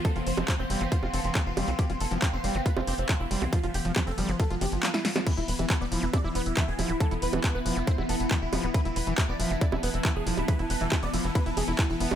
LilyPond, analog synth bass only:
\new Staff \with { instrumentName = "Analog synth bass" } { \clef bass \time 4/4 \tempo 4 = 138 r16 f,,16 f,,16 f,,16 r16 f,,16 f,,16 g,,16 r16 f,,16 f,,16 f,,16 r16 f,,16 f,,16 c,16 | r16 f,,16 f,,16 f,,16 r16 f,,16 f,,16 g,,16 r16 f,,16 f,,16 f,,16 r16 f,,16 f,,16 c,16 | r16 f,,16 f,,16 f,,16 r16 f,,16 f,,16 g,,16 r16 f,,16 f,,16 g,,16 r4 | r16 e,,16 e,,16 e,,16 r16 e,,16 e,,16 f,,16 r16 e,,16 e,,16 e,,16 r16 e,,16 e,,16 d,,16 |
r16 e,,16 e,,16 e,,16 r16 e,,16 e,,16 f,,16 r16 e,,16 e,,16 e,,16 r16 e,,16 e,,16 d,,16 | r16 e,,16 e,,16 e,,16 r16 e,,16 e,,16 f,,16 r16 e,,16 e,,16 e,,16 r16 e,,16 e,,16 d,,16 | r16 e,,16 e,,16 e,,16 r16 e,,16 e,,16 f,,16 r16 e,,16 e,,16 e,,16 r16 e,,16 e,,16 e,,16 | }